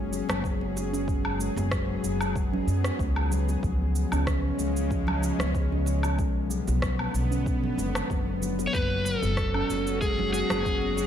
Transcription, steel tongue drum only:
Already playing: G#3
0.12 F#3
0.44 F#3
0.61 B3
0.93 C#4
1.40 G#3
1.72 F#3
2.04 F#3
2.21 B3
2.53 C#4
3.00 G#3
3.31 F#3
3.63 F3
3.81 B3
4.12 C#4
4.59 G#3
4.91 F3
5.22 F3
5.40 B3
5.72 C#4
6.18 G#3
6.50 F#3
6.82 F#3
6.99 B3
7.31 C#4
7.78 G#3
8.10 F#3
8.42 F#3
8.59 B3
8.74 F#3
9.06 F#3
9.23 B3
9.55 C#4
10.02 G#3
10.34 F#3
10.65 F#3
10.83 B3

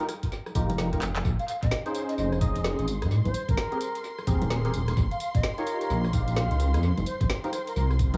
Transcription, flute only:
1.39 F5
1.48 F5
1.62 D#5
2.09 D#5
2.18 D#5
3.25 C5
3.48 A#4
5.11 F5
5.20 F5
5.35 D#5
5.58 A#4
5.81 A#4
7.06 C5
7.21 C5
7.44 C5
7.53 C5
7.67 A#4
7.76 A#4

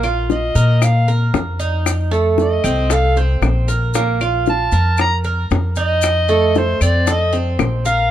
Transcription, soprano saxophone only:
0.32 D#5
0.84 F5
2.42 D#5
2.93 F5
4.50 A5
5.01 A#5
5.79 D#5
6.58 C5
6.82 D5
7.11 D#5
7.86 F5

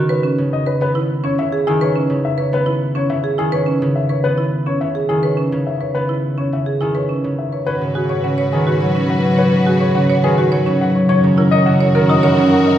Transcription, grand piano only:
0.10 B4
0.53 D#5
0.67 B4
0.82 B4
1.24 C#5
1.39 E5
1.67 G#4
1.82 C#5
2.25 E5
2.39 C#5
2.54 B4
2.96 C#5
3.10 E5
3.39 G#4
3.53 C#5
3.96 E5
4.10 C#5
4.24 B4
4.67 C#5
4.81 E5
5.09 G#4
5.24 C#5
5.67 E5
5.80 C#5
5.95 B4
6.38 C#5
6.53 E5
6.81 G#4
6.95 C#5
7.39 E5
7.53 C#5
7.67 B4
7.95 G#4
8.10 C#5
8.24 F#5
8.53 G#4
8.67 C#5
9.10 F#5
9.24 C#5
9.39 B4
9.66 G#4
9.81 C#5
9.95 F#5
10.24 G#4
10.38 C#5
10.81 F#5
10.96 C#5
11.09 C#5
11.38 A#4
11.51 D#5
11.66 F#5
11.95 A#4
12.10 D#5
12.24 A#4
12.52 F#5
12.66 D#5

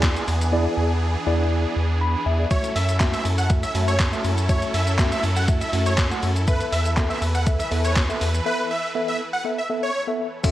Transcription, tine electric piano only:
Already playing: B3 E4 G#4 D5
0.52 B3 E4 G#4 D5
1.27 B3 E4 G#4 D5
2.01 B5
2.26 E5
2.39 G#4 D5
2.51 A3 F#4 E5
3.00 A3 F#4 E5
3.50 A3 F#4 E5
3.74 A3 F#4 E5
4.12 A3 F#4 E5
4.49 A3 F#4 E5
4.98 A3 F#4 E5
5.48 A3 F#4 E5
5.73 A3 F#4 E5
6.11 A3 F#4 F#5
6.47 B3 A4 E5
6.97 B3 A4 E5
7.46 B3 A4 E5
7.71 B3 A4 E5
8.09 B3 A4 E5
8.45 B3 A4 E5
8.95 B3 A4 E5
9.45 B3 A4 E5
9.69 B3 A4 E5
10.07 B3 A4 E5
10.44 C#4 F#4 A4 E5

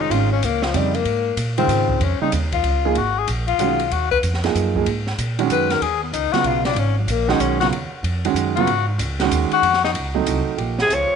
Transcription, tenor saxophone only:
0.00 D#4
0.12 F4
0.31 C#4
0.45 A#3
0.64 F3
0.77 G3
0.95 A#3
1.58 C4
2.03 C#4
2.21 D#4
2.53 F4
2.98 F#4
3.18 G#4
3.47 F4
3.92 F#4
4.11 B4
5.52 B4
5.71 A#4
5.82 G#4
6.03 B3
6.13 D#4
6.33 F#4
6.47 F4
6.66 D4
6.78 C#4
6.98 F#3
7.10 A#3
7.29 D#4
7.40 C#4
7.60 F#4
8.55 F#4
8.88 D#4
9.53 F#4
9.84 D#4
10.83 C3
10.94 F3

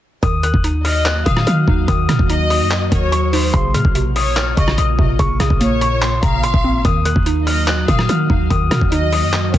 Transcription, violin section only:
0.85 D#5
1.26 F5
2.30 D#5
2.92 C#5
3.33 C5
4.16 C#5
4.57 D#5
5.61 C#5
6.23 F5
7.47 D#5
7.88 F5
8.92 D#5
9.54 C#5

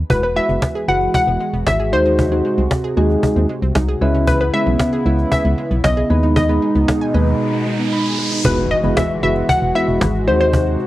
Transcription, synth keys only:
0.10 G#3 E4 F#4 B4
0.36 G#3 E4 F#4 B4
0.88 G#3 E4 F#4 B4
1.92 G#3 D#4 F#4 C5
2.31 G#3 D#4 F#4 C5
2.97 G#3 D#4 F#4 G#4
4.01 G#3 C#4 E4 B4
4.53 G#3 C#4 E4 B4
5.06 G#3 C#4 E4 B4
6.10 G#3 B3 D#4 B4
6.49 G#3 B3 D#4 B4
7.14 G#3 B3 D#4 B4
7.93 B5
8.44 G#3 B3 E4 F#4 B4
8.84 G#3 B3 E4 F#4 B4
9.23 G#3 B3 E4 F#4 B4
9.75 G#3 B3 E4 F#4 B4
10.27 G#3 C4 D#4 F#4 C5

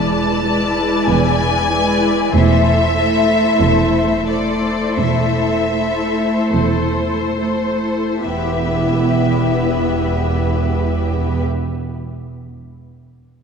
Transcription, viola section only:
Already playing: G#3 E4
0.46 G#3 E4
1.71 G#3 E4
2.34 A3 E4
2.97 A3 E4
4.28 A3 E4
5.75 A3 E4
7.39 A3 E4
8.24 B3 E4

